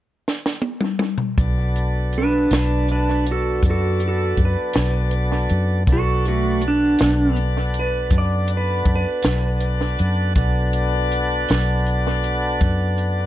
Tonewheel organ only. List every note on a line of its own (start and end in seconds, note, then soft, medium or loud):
1.38 5.84 F#3 medium
1.38 5.83 B3 medium
1.38 5.84 D4 medium
1.38 5.83 A4 medium
5.87 10.33 B3 medium
5.87 10.33 D4 medium
5.87 10.34 F#4 medium
5.87 10.34 A4 medium
10.36 13.26 B3 medium
10.36 13.26 D4 medium
10.36 13.26 F#4 medium
10.36 13.26 A4 medium